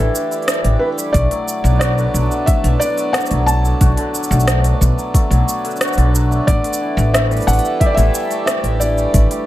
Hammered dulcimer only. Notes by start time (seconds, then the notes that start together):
Already playing: D3 E3 A3
0.15 D3
0.31 E4
0.65 D4
0.81 E4
0.98 G3
1.15 A3
1.31 F#3
1.64 D3
1.81 F#4
1.98 D3
2.15 F#3
2.31 A3
2.65 B2
2.81 D3
2.98 F#3
3.15 A3
3.31 F#3
3.65 D3
3.81 F#4
3.98 D3
4.14 F#3
4.31 A3
4.65 B2
4.81 D3
4.98 F#3
5.15 A3
5.31 F#3
5.64 D3
5.81 F#4
5.98 D3
6.14 F#3
6.31 A3
6.64 D3
6.81 E3
6.97 G3
7.14 A3
7.31 G3
7.64 E3
7.81 G4
7.98 E3
8.15 G3
8.31 A3
8.64 D3
8.81 E3
8.98 G3
9.14 A3
9.31 G3